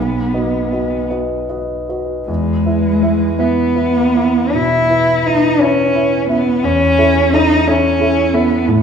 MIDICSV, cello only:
0, 0, Header, 1, 2, 480
1, 0, Start_track
1, 0, Key_signature, 4, "major"
1, 0, Tempo, 774194
1, 1415, Time_signature, 12, 3, 24, 8
1, 1416, Tempo, 738916
1, 2376, Tempo, 779221
1, 2856, Tempo, 696864
1, 4776, Tempo, 675676
1, 5840, End_track
2, 0, Start_track
2, 0, Title_t, "Cello"
2, 0, Program_c, 0, 42
2, 0, Note_on_c, 0, 59, 63
2, 662, Note_off_c, 0, 59, 0
2, 1419, Note_on_c, 0, 56, 66
2, 2134, Note_on_c, 0, 59, 65
2, 2144, Note_off_c, 0, 56, 0
2, 2860, Note_on_c, 0, 64, 62
2, 2870, Note_off_c, 0, 59, 0
2, 3354, Note_on_c, 0, 63, 61
2, 3365, Note_off_c, 0, 64, 0
2, 3583, Note_on_c, 0, 61, 62
2, 3593, Note_off_c, 0, 63, 0
2, 4057, Note_off_c, 0, 61, 0
2, 4065, Note_on_c, 0, 59, 60
2, 4303, Note_on_c, 0, 61, 70
2, 4313, Note_off_c, 0, 59, 0
2, 4779, Note_on_c, 0, 63, 67
2, 4790, Note_off_c, 0, 61, 0
2, 5020, Note_on_c, 0, 61, 63
2, 5030, Note_off_c, 0, 63, 0
2, 5496, Note_on_c, 0, 59, 59
2, 5506, Note_off_c, 0, 61, 0
2, 5739, Note_on_c, 0, 57, 70
2, 5749, Note_off_c, 0, 59, 0
2, 5840, Note_off_c, 0, 57, 0
2, 5840, End_track
0, 0, End_of_file